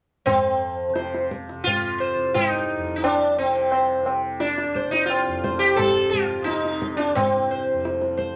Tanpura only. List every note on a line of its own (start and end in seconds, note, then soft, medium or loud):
0.26 2.75 F2 medium
0.89 1.51 C3 soft
1.51 3.39 C3 medium
2.14 4.63 C2 medium
2.76 5.25 F2 medium
3.39 4.01 C3 medium
4.01 5.85 C3 medium
4.63 7.08 C2 medium
5.26 7.71 F2 medium
5.85 6.49 C3 medium
6.49 8.36 C3 medium
7.08 8.36 C2 medium
7.71 8.36 F2 soft